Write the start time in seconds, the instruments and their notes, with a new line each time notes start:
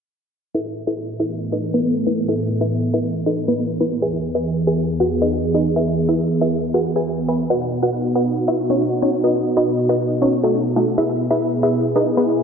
0.54 supersaw synth A2 E3 B3 A4, synth pluck E4 A4 B4 E5
0.87 synth pluck E4 A4 B4 E5
1.20 synth pluck E4 A4 B4 E5
1.52 synth pluck D#4 A4 B4 D#5
1.74 synth pluck B3 E4 B4
2.07 synth pluck B3 E4 B4
2.28 synth pluck E4 A4 B4 E5
2.61 synth pluck E4 A4 B4 E5
2.94 synth pluck E4 A4 B4 E5
3.26 synth pluck D#4 A4 B4 D#5
3.48 synth pluck B3 E4 B4
3.81 synth pluck B3 E4 B4
4.02 supersaw synth E2 B3 G#4, synth pluck G#4 B4 E5 G#5
4.35 synth pluck G#4 B4 E5 G#5
4.67 synth pluck G#4 B4 E5 G#5
5.00 synth pluck F#4 G#4 B4 F#5
5.22 synth pluck D#4 G#4 B4 D#5
5.54 synth pluck D#4 G#4 B4 D#5
5.76 synth pluck E4 G#4 B4 E5
6.09 synth pluck E4 G#4 B4 E5
6.41 synth pluck E4 G#4 B4 E5
6.74 synth pluck F#4 G#4 B4 F#5
6.96 synth pluck G#4 B4 E5 G#5
7.28 synth pluck B4 E5 G#5 B5
7.50 supersaw synth B2 D#4 F#4, synth pluck F#4 B4 D#5 F#5
7.83 synth pluck F#4 B4 D#5 F#5
8.15 synth pluck F#4 B4 D#5 F#5
8.48 synth pluck E4 F#4 B4 E5
8.70 synth pluck C#4 D#4 F#4 C#5
9.02 synth pluck C#4 D#4 F#4 C#5
9.24 synth pluck D#4 F#4 B4 D#5
9.57 synth pluck D#4 F#4 B4 D#5
9.89 synth pluck D#4 F#4 B4 D#5
10.22 synth pluck C#4 D#4 F#4 C#5
10.44 synth pluck A3 D#4 F#4 A4
10.76 synth pluck A3 D#4 F#4 A4
10.98 supersaw synth B3 E4 G#4, synth pluck E4 G#4 B4 E5
11.31 synth pluck E4 G#4 B4 E5
11.63 synth pluck E4 G#4 B4 E5
11.96 synth pluck D#4 G#4 B4 D#5
12.17 synth pluck B3 E4 G#4 B4